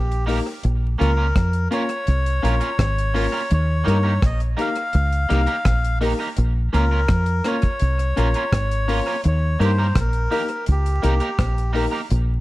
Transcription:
Already playing: fingered electric bass A#1, melodica G4
0.12 closed hi-hat
0.26 clean electric guitar A#3 D#4 G4 A#4, upright piano A#3 D#4 G4 A#4, open hi-hat
0.64 fingered electric bass A#1, closed hi-hat
0.98 fingered electric bass C#2, clean electric guitar A#3 C#4 F4 A#4, upright piano A#3 C#4 F4 A#4, melodica A#4, closed hi-hat
1.17 clean electric guitar A#3 C#4 F4 A#4
1.36 fingered electric bass F2, kick, cross-stick, closed hi-hat
1.53 closed hi-hat
1.71 upright piano A#3 C#4 F4 A#4, clean electric guitar A#3 C#4 F4 A#4, melodica C#5, closed hi-hat
1.89 closed hi-hat
2.07 fingered electric bass C2, closed hi-hat
2.26 closed hi-hat
2.42 fingered electric bass A#1, upright piano A#3 C#4 F4 A#4, clean electric guitar A#3 C#4 F4 A#4, closed hi-hat
2.60 clean electric guitar A#3 C#4 F4 A#4, upright piano F4 A#4, closed hi-hat
2.79 fingered electric bass G#1, kick, cross-stick, closed hi-hat
2.98 closed hi-hat
3.14 upright piano A#3 C#4 F4 A#4, clean electric guitar A#3 C#4 F4 A#4, open hi-hat
3.32 clean electric guitar A#3 C#4 F4 A#4
3.51 fingered electric bass D#2, melodica C#5, closed hi-hat
3.84 fingered electric bass G2, clean electric guitar A#3 D#4 G4 A#4, upright piano A#3 D#4 G4 A#4
3.88 closed hi-hat
4.03 clean electric guitar A#3 D#4 G4 A#4
4.22 fingered electric bass A#1, melodica D#5, kick, cross-stick, closed hi-hat
4.40 closed hi-hat
4.57 clean electric guitar A#3 D#4 G4 A#4, upright piano A#3 D#4 G4 A#4, closed hi-hat
4.61 melodica F5
4.75 closed hi-hat
4.93 fingered electric bass C#2, closed hi-hat
5.12 closed hi-hat
5.29 fingered electric bass C2, clean electric guitar A#3 D#4 G4 A#4, upright piano A#3 D#4 G4 A#4, closed hi-hat
5.46 clean electric guitar A#3 D#4 G4 A#4, closed hi-hat
5.65 fingered electric bass A#1, kick, cross-stick, closed hi-hat
5.85 closed hi-hat
6.01 upright piano A#3 D#4 G4 A#4, clean electric guitar A#3 D#4 G4 A#4, open hi-hat
6.20 clean electric guitar A#3 D#4 G4 A#4
6.37 fingered electric bass A#1, closed hi-hat
6.72 fingered electric bass C#2, upright piano A#3 C#4 F4 A#4, clean electric guitar A#3 C#4 F4 A#4, melodica A#4, closed hi-hat
6.91 clean electric guitar A#3 C#4 F4 A#4
7.08 fingered electric bass F2, kick, cross-stick, closed hi-hat
7.26 closed hi-hat
7.44 upright piano A#3 C#4 F4 A#4, clean electric guitar A#3 C#4 F4 A#4, melodica C#5, cross-stick, closed hi-hat
7.62 kick, closed hi-hat
7.80 fingered electric bass C2, closed hi-hat
7.99 closed hi-hat
8.16 fingered electric bass A#1, upright piano A#3 C#4 F4 A#4, clean electric guitar A#3 C#4 F4 A#4, closed hi-hat
8.34 clean electric guitar A#3 C#4 F4 A#4, closed hi-hat
8.52 fingered electric bass G#1, kick, cross-stick, closed hi-hat
8.71 closed hi-hat
8.88 upright piano A#3 C#4 F4 A#4, clean electric guitar A#3 C#4 F4 A#4, open hi-hat
9.07 clean electric guitar A#3 C#4 F4 A#4
9.24 fingered electric bass D#2, melodica C#5, closed hi-hat
9.59 fingered electric bass G2, upright piano A#3 D#4 G4 A#4, clean electric guitar A#3 D#4 G4 A#4, closed hi-hat
9.65 melodica C5
9.78 clean electric guitar A#3 D#4 G4 A#4
9.95 fingered electric bass A#1, kick, cross-stick, closed hi-hat
10.00 melodica A#4
10.13 closed hi-hat
10.31 clean electric guitar A#3 D#4 G4 A#4, upright piano A#3 D#4 G4 A#4, open hi-hat
10.49 closed hi-hat
10.66 fingered electric bass C#2, closed hi-hat
10.71 melodica G4
10.86 closed hi-hat
11.02 fingered electric bass C2, upright piano A#3 D#4 G4 A#4, clean electric guitar A#3 D#4 G4 A#4, closed hi-hat
11.20 clean electric guitar A#3 D#4 G4 A#4, closed hi-hat
11.39 fingered electric bass A#1, kick, cross-stick, closed hi-hat
11.58 closed hi-hat
11.73 clean electric guitar A#3 D#4 G4 A#4, upright piano A#3 D#4 G4 A#4, open hi-hat
11.91 clean electric guitar A#3 D#4 G4 A#4
12.10 fingered electric bass A#1, closed hi-hat

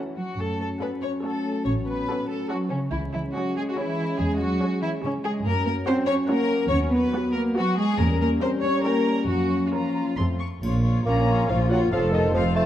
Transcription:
Already playing: cello section E3, bassoon F#3
0.15 cello section F#3, violin section F#4
0.35 double bass section F#2, french horn section F#3 C#4, cello section A3, violin section A4
0.59 cello section A3, violin section A4
0.79 cello section B3, viola section C#4 A4, violin section B4 F#5
1.02 cello section C#4, violin section C#5
1.23 cello section A3, viola section C#4 A4, violin section A4 F#5
1.64 double bass section A1, cello section C#4, violin section C#5
1.86 cello section B3, violin section B4
2.08 viola section C#4 A4, violin section F#5
2.29 cello section A3, violin section A4
2.49 cello section F#3, viola section C#4 A4, violin section F#4 F#5
2.69 cello section C#3, violin section C#4
2.92 double bass section C#2, cello section E3, french horn section G#3 C#4, violin section E4
3.13 cello section E3, violin section E4
3.33 cello section F#3, viola section C#4 G#4, violin section F#4 C#5
3.56 cello section G#3, violin section G#4
3.70 violin section F#4
3.76 cello section E3, viola section C#4 G#4, violin section E4 C#5
4.19 double bass section E2, cello section G#3, violin section G#4
4.39 cello section F#3, violin section F#4
4.61 viola section C#4 G#4, violin section C#5
4.82 cello section E3, violin section E4
5.03 cello section C#3, viola section C#4 G#4, violin section C#4 C#5
5.24 cello section G#3, violin section G#4
5.44 double bass section F#2, french horn section F#3 C#4, cello section A#3, violin section A#4
5.65 cello section A#3, violin section A#4
5.86 cello section C4, viola section C#4 F#4, violin section C5 F#5
6.07 cello section C#4, violin section C#5
6.28 cello section A#3, viola section C#4 F#4, violin section A#4 F#5
6.69 double bass section D#2, french horn section B3, cello section C#4, violin section C#5
6.91 cello section B3, violin section B4
7.13 viola section B3 F#4, violin section F#5
7.33 cello section A#3, violin section A#4
7.55 cello section F#3, viola section B3 F#4, violin section F#4 F#5
7.76 cello section G#3, violin section G#4
7.98 double bass section E2, french horn section G3 C#4, cello section A#3, violin section A#4
8.20 cello section A#3, violin section A#4
8.40 cello section C4, viola section C#4 A#4, violin section C5 G5
8.63 cello section C#4, violin section C#5
8.84 cello section A#3, viola section C#4 A#4, violin section A#4 G5
9.28 double bass section F2, cello section F#3, french horn section A#3, violin section F#4
9.67 violin section F#4
9.73 cello section F3, viola section C#4 A#4, violin section F4 A#5
9.95 violin section A#5
10.17 double bass section F2, french horn section A3 C4, viola section C4 A4, violin section C6
10.39 violin section C#6
10.62 double bass section A#1, tuba A#1, cello section A#2, violin section F4 C#5, triangle
10.84 violin section F4 C#5
11.05 tuba A#1, double bass section A#1, cello section A#2, bassoon A#3, viola section C#4, violin section F4 C#5 A#5
11.28 violin section F4 C#5
11.48 tuba A#1, double bass section A#1, cello section A#2, bassoon F3, viola section F4, violin section F4 C#5 F5
11.70 bassoon F#3, violin section F4 C#5 F#5
11.91 tuba F1, double bass section F1, cello section F2, bassoon F3, violin section F4 C5 F5, viola section A4
12.13 bassoon D#3, violin section F4 C5 D#5
12.34 tuba F1, double bass section F1, cello section F2, bassoon F3, viola section C4, violin section F4 C5 F5
12.55 bassoon A3, violin section F4 C5 A5

